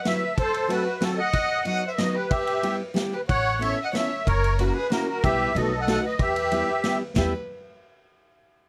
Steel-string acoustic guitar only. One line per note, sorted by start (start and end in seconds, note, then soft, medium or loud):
0.06 0.22 F#3 soft
0.06 0.22 G3 soft
0.06 0.23 B3 medium
0.06 0.22 E4 medium
0.67 0.85 F#3 medium
0.67 0.86 A3 medium
0.67 0.86 C4 soft
0.67 0.86 F#4 medium
1.00 1.18 F#3 medium
1.00 1.18 A3 medium
1.00 1.18 C4 soft
1.00 1.19 F#4 medium
1.65 1.83 F#3 soft
1.65 1.82 B3 medium
1.65 1.83 D#4 soft
1.65 1.83 F#4 medium
1.99 2.15 F#3 medium
1.99 2.15 B3 soft
1.99 2.16 D#4 medium
1.99 2.16 F#4 medium
2.63 2.80 G3 medium
2.63 2.80 B3 soft
2.63 2.80 E4 medium
2.63 2.81 G4 medium
2.94 3.12 G3 medium
2.94 3.12 B3 medium
2.94 3.13 E4 medium
2.94 3.12 G4 medium
3.59 3.77 B3 soft
3.59 3.77 C#4 soft
3.59 3.78 E4 soft
3.59 3.78 A4 medium
3.93 4.10 B3 medium
3.93 4.10 C#4 soft
3.93 4.10 E4 soft
3.93 4.10 A4 medium
4.59 4.75 A#3 medium
4.59 4.76 C#4 soft
4.59 4.75 E4 soft
4.59 4.76 F#4 medium
4.90 5.07 A#3 medium
4.90 5.08 C#4 medium
4.90 5.08 E4 medium
4.90 5.08 F#4 medium
5.24 5.49 G3 medium
5.24 5.50 B3 medium
5.24 5.50 E4 medium
5.24 5.50 G4 medium
5.56 5.72 A3 medium
5.56 5.72 B3 soft
5.56 5.72 D#4 medium
5.56 5.73 F#4 medium
5.87 6.04 A3 medium
5.87 6.04 B3 soft
5.87 6.04 D#4 medium
5.87 6.04 F#4 medium
6.51 6.68 G3 medium
6.51 6.68 B3 medium
6.51 6.69 E4 medium
6.51 6.69 G4 medium
6.84 7.01 G3 medium
6.84 7.01 B3 medium
6.84 7.01 E4 medium
6.84 7.02 G4 medium
7.17 7.32 G3 medium
7.17 7.32 B3 medium
7.17 7.32 E4 medium
7.17 7.32 G4 medium